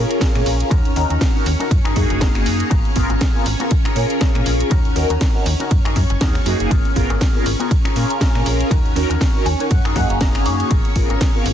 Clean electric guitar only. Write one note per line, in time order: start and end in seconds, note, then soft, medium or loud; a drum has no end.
0.09 muted clean electric guitar stroke soft
0.20 0.35 C#4 medium
0.20 0.35 F4 medium
0.20 0.35 G#4 medium
0.20 0.35 A#4 medium
0.45 muted clean electric guitar stroke soft
0.70 0.90 C#4 loud
0.70 0.90 D#4 loud
0.70 0.91 F#4 medium
0.70 0.91 A#4 loud
1.10 1.35 C#4 medium
1.10 1.35 D#4 medium
1.10 1.35 F#4 medium
1.10 1.36 A#4 loud
1.59 1.71 C#4 medium
1.59 1.71 D#4 medium
1.59 1.71 F#4 medium
1.59 1.71 A#4 medium
1.84 1.96 D#4 loud
1.84 1.96 F#4 medium
1.84 1.96 G#4 medium
1.84 1.96 A#4 loud
2.10 muted clean electric guitar stroke soft
2.20 2.35 D#4 loud
2.20 2.35 F#4 medium
2.20 2.35 G#4 medium
2.20 2.35 A#4 loud
2.46 muted clean electric guitar stroke soft
2.70 2.90 B3 loud
2.70 2.90 F4 loud
2.70 2.91 G#4 medium
2.70 2.91 A#4 loud
3.09 3.35 B3 medium
3.09 3.35 F4 medium
3.09 3.35 G#4 medium
3.09 3.35 A#4 loud
3.60 3.71 B3 medium
3.60 3.71 F4 medium
3.60 3.71 G#4 medium
3.60 3.71 A#4 loud
3.84 3.96 C#4 loud
3.84 3.96 F4 medium
3.84 3.96 G#4 loud
3.84 3.96 A#4 loud
4.09 muted clean electric guitar stroke soft
4.20 4.35 C#4 medium
4.20 4.35 F4 medium
4.20 4.35 G#4 medium
4.20 4.35 A#4 loud
4.45 muted clean electric guitar stroke soft
4.70 4.90 C#4 loud
4.70 4.90 D#4 medium
4.70 4.91 F#4 loud
4.70 4.91 A#4 loud
5.09 5.35 C#4 medium
5.09 5.35 D#4 medium
5.09 5.35 F#4 medium
5.09 5.35 A#4 loud
5.60 5.71 C#4 medium
5.60 5.71 D#4 medium
5.60 5.71 F#4 medium
5.60 5.71 A#4 medium
5.85 5.96 D#4 loud
5.85 5.96 F#4 loud
5.85 5.96 G#4 medium
5.85 5.96 A#4 loud
6.10 muted clean electric guitar stroke soft
6.21 6.35 D#4 medium
6.21 6.35 F#4 medium
6.21 6.35 G#4 medium
6.21 6.36 A#4 loud
6.46 muted clean electric guitar stroke soft
6.70 6.90 B3 loud
6.70 6.91 F4 medium
6.70 6.91 G#4 loud
6.70 6.91 A#4 loud
7.10 7.35 B3 medium
7.10 7.35 F4 medium
7.10 7.35 G#4 medium
7.10 7.36 A#4 medium
7.59 7.71 B3 medium
7.59 7.71 F4 medium
7.59 7.71 G#4 medium
7.59 7.71 A#4 medium
7.84 7.96 C#4 loud
7.84 7.96 F4 loud
7.84 7.96 G#4 loud
7.84 7.96 A#4 loud
8.10 muted clean electric guitar stroke soft
8.20 8.35 C#4 medium
8.20 8.35 F4 medium
8.20 8.35 G#4 medium
8.20 8.36 A#4 loud
8.46 muted clean electric guitar stroke soft
8.70 8.90 C#4 loud
8.70 8.91 D#4 loud
8.70 8.91 F#4 loud
8.70 8.91 A#4 loud
9.09 9.35 C#4 medium
9.09 9.35 D#4 medium
9.09 9.35 F#4 medium
9.09 9.35 A#4 loud
9.46 9.69 G#5 medium
9.59 9.71 C#4 medium
9.59 9.71 D#4 medium
9.59 9.71 F#4 medium
9.59 9.71 C#5 medium
9.71 9.94 F#5 medium
9.84 9.96 D#4 loud
9.84 9.96 F#4 medium
9.84 9.96 G#4 loud
9.84 9.96 A#4 loud
9.96 10.19 F#5 medium
10.09 muted clean electric guitar stroke soft
10.20 10.35 D#4 medium
10.20 10.35 F#4 medium
10.20 10.35 G#4 medium
10.20 10.35 A#4 loud
10.20 10.44 D#5 medium
10.45 10.69 C#5 medium
10.45 muted clean electric guitar stroke soft
10.70 10.90 B3 loud
10.70 10.90 F4 medium
10.70 10.90 G#4 loud
10.70 10.91 A#4 loud
11.09 11.35 B3 medium
11.09 11.35 F4 medium
11.09 11.35 G#4 medium
11.09 11.35 A#4 loud